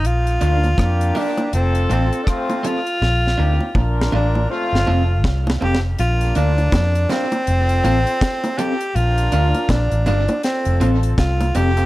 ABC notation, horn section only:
X:1
M:4/4
L:1/16
Q:"Swing 16ths" 1/4=81
K:Bb
V:1 name="Horn section"
z2 [B,DF]2 [B,DG]4 [CFA]4 [A,CF]3 z | z2 [CEG]2 [DFB]4 [A,CF]4 z4 | [B,DF]6 z2 [CFA]6 z2 | [DFB]6 z2 [CFA]6 z2 |]